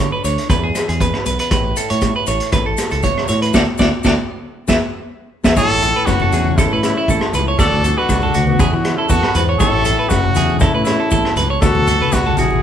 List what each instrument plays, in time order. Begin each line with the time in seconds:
Already playing: nylon-string guitar D3, clean electric guitar C#5
0.00 nylon-string guitar D5
0.12 clean electric guitar B4
0.24 fingered electric bass D2, nylon-string guitar D4, clean electric guitar C#5, closed hi-hat, maracas
0.38 closed hi-hat
0.49 fingered electric bass E2, nylon-string guitar E2 B3 E4 G#4 B4, clean electric guitar B4, kick, cross-stick, closed hi-hat, maracas
0.64 clean electric guitar G#4
0.75 nylon-string guitar G#4, cross-stick, closed hi-hat, maracas
0.89 fingered electric bass E2, clean electric guitar G#4, closed hi-hat, maracas
1.00 clean electric guitar B4, nylon-string guitar B4, kick, closed hi-hat, maracas
1.14 cross-stick
1.26 fingered electric bass B1, nylon-string guitar B3, clean electric guitar B4, closed hi-hat, maracas
1.39 clean electric guitar B4, closed hi-hat
1.51 fingered electric bass A1, nylon-string guitar A2 C#5, clean electric guitar B4, kick, cross-stick, closed hi-hat, maracas
1.76 clean electric guitar A4, nylon-string guitar A4, closed hi-hat, maracas
1.90 fingered electric bass A2, clean electric guitar C#5, closed hi-hat
2.01 kick, cross-stick, closed hi-hat, maracas
2.16 clean electric guitar B4
2.27 fingered electric bass A1, nylon-string guitar A3, clean electric guitar C#5, closed hi-hat, maracas
2.40 closed hi-hat
2.52 fingered electric bass A1, clean electric guitar B4, kick, cross-stick, closed hi-hat, maracas
2.66 clean electric guitar A4
2.77 nylon-string guitar A4, cross-stick, closed hi-hat, maracas
2.90 fingered electric bass C#2, clean electric guitar A4, closed hi-hat, maracas
3.03 nylon-string guitar E2, clean electric guitar C#5, kick, closed hi-hat, maracas
3.17 cross-stick
3.28 fingered electric bass A2, nylon-string guitar E4, clean electric guitar C#5, closed hi-hat, maracas
3.42 clean electric guitar B4, closed hi-hat
3.53 fingered electric bass D2, nylon-string guitar E4 F#4 A4, clean electric guitar F#4 A4 D5, kick, snare, maracas
3.78 fingered electric bass D2, nylon-string guitar E4 F#4 A4, clean electric guitar F#4 A4 D5, kick, snare, maracas
4.04 fingered electric bass D2, nylon-string guitar E4 F#4 A4, clean electric guitar F#4 A4 D5, kick, snare, maracas
4.67 fingered electric bass E2, nylon-string guitar F#4 G#4 B4, clean electric guitar G#4 B4 E5, kick, snare, maracas
5.44 fingered electric bass E2, nylon-string guitar F#4 G#4 B4, clean electric guitar G#4 B4 E5, kick, snare, maracas
5.56 fingered electric bass A1, nylon-string guitar A2 E4, alto saxophone E4, trumpet A4, clean electric guitar C#5, kick, cross-stick, low conga, maracas
5.71 fingered electric bass A1
5.81 clean electric guitar A4, closed hi-hat, low conga, maracas
5.96 clean electric guitar B4
6.06 fingered electric bass F#1, nylon-string guitar A3, alto saxophone C#4, trumpet F#4, kick, cross-stick, maracas
6.20 clean electric guitar A4, high conga
6.32 fingered electric bass E2, nylon-string guitar E4, clean electric guitar G#4, closed hi-hat, low conga, maracas
6.45 high conga
6.57 nylon-string guitar E2, alto saxophone C#4, trumpet E4, clean electric guitar A4, kick, cross-stick, maracas
6.72 fingered electric bass A2, clean electric guitar B4
6.82 nylon-string guitar A3, alto saxophone C#4, trumpet E4, cross-stick, closed hi-hat, maracas
6.98 clean electric guitar E4
7.08 fingered electric bass A1, nylon-string guitar A3, clean electric guitar A4, kick, maracas
7.21 cross-stick
7.33 fingered electric bass C#2, nylon-string guitar E4, clean electric guitar B4, closed hi-hat, low conga, maracas
7.48 clean electric guitar C#5
7.58 fingered electric bass D2, nylon-string guitar D3 F#4, alto saxophone F#4, trumpet A4, clean electric guitar D5, kick, cross-stick, low conga, maracas
7.73 fingered electric bass D2
7.84 clean electric guitar A4, closed hi-hat, low conga, maracas
7.98 alto saxophone D4, trumpet F#4, clean electric guitar B4
8.09 fingered electric bass C#2, nylon-string guitar D4, kick, cross-stick, maracas
8.22 clean electric guitar A4, high conga
8.34 fingered electric bass D2, nylon-string guitar D4, clean electric guitar F#4, closed hi-hat, maracas
8.46 alto saxophone B3, trumpet F#4, high conga
8.59 nylon-string guitar E2 E4, fingered electric bass E2, clean electric guitar G#4, kick, cross-stick, maracas
8.73 fingered electric bass E3, muted clean electric guitar stroke
8.85 cross-stick, closed hi-hat
8.97 alto saxophone C#4, trumpet E4, clean electric guitar A4
9.08 fingered electric bass E2, nylon-string guitar F#2, alto saxophone B3, trumpet F#4, clean electric guitar A4, kick, maracas
9.23 cross-stick
9.35 fingered electric bass E2, nylon-string guitar G#2, clean electric guitar B4, closed hi-hat, low conga, maracas
9.49 clean electric guitar C#5
9.58 fingered electric bass A1, nylon-string guitar A2 A3 E4, alto saxophone E4, trumpet A4, clean electric guitar C#5, kick, cross-stick, low conga, maracas
9.73 fingered electric bass A1
9.85 clean electric guitar A4, closed hi-hat, low conga, maracas
9.99 clean electric guitar B4
10.09 fingered electric bass F#1, nylon-string guitar A3, alto saxophone C#4, trumpet F#4, kick, cross-stick, maracas
10.24 muted clean electric guitar stroke, high conga
10.35 fingered electric bass E2, nylon-string guitar E4, clean electric guitar G#4, closed hi-hat, low conga, maracas
10.50 high conga
10.59 nylon-string guitar E2, alto saxophone C#4, trumpet E4, clean electric guitar A4, kick, cross-stick, maracas
10.74 fingered electric bass A2, clean electric guitar B4
10.85 nylon-string guitar A3, alto saxophone C#4, trumpet E4, cross-stick, closed hi-hat, maracas
11.00 clean electric guitar A4
11.11 fingered electric bass A1, nylon-string guitar A3, clean electric guitar A4, kick, maracas
11.25 cross-stick
11.36 fingered electric bass C#2, nylon-string guitar E4, clean electric guitar B4, closed hi-hat, low conga, maracas
11.50 clean electric guitar C#5
11.61 fingered electric bass D2, nylon-string guitar D4 F#4, alto saxophone F#4, trumpet A4, muted nylon-string guitar stroke, muted clean electric guitar stroke, kick, cross-stick, low conga, maracas
11.75 fingered electric bass D2, high conga
11.87 clean electric guitar A4, closed hi-hat, low conga, maracas
12.00 clean electric guitar B4, high conga
12.11 fingered electric bass C#2, nylon-string guitar D4, alto saxophone D4, trumpet F#4, kick, cross-stick, maracas
12.26 clean electric guitar A4, high conga
12.37 fingered electric bass A1, alto saxophone E4, clean electric guitar F#4, trumpet G#4, closed hi-hat, low conga, maracas
12.51 high conga